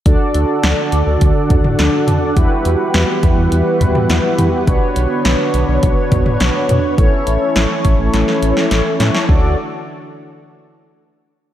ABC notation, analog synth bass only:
X:1
M:4/4
L:1/16
Q:1/4=104
K:D
V:1 name="Analog synth bass" clef=bass
D,, z D,, z D,, z D,, D,, D,, z D,, z D,, z D, z | E,, z E,, z E,, z E,, E,, E,, z E,, z E,, z E, z | B,,, z B,,, z B,,, z B,,, B,,, B,,, z B,,, z B,,, z B,, z | A,,, z A,,, z A,,, z A,,, A,,, A,,, z A,,, z A,,, z A,, z |
D,,2 z12 z2 |]